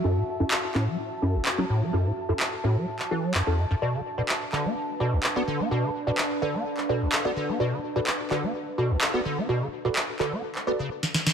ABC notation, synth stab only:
X:1
M:4/4
L:1/16
Q:1/4=127
K:Bdor
V:1 name="Synth stab"
[CEFA] z2 [CEFA] z2 [CEFA] z3 [CEFA] z2 [CEFA] z2 | [CEFA] z2 [CEFA] z2 [CEFA] z3 [CEFA] z2 [CEFA] z2 | [FABd] z2 [FABd] z2 [FABd] z3 [FABd] z2 [FABd] z2 | [FABd] z2 [FABd] z2 [FABd] z3 [FABd] z2 [FABd] z2 |
[FABd] z2 [FABd] z2 [FABd] z3 [FABd] z2 [FABd] z2 | [FABd] z2 [FABd] z2 [FABd] z3 [FABd] z4 z |]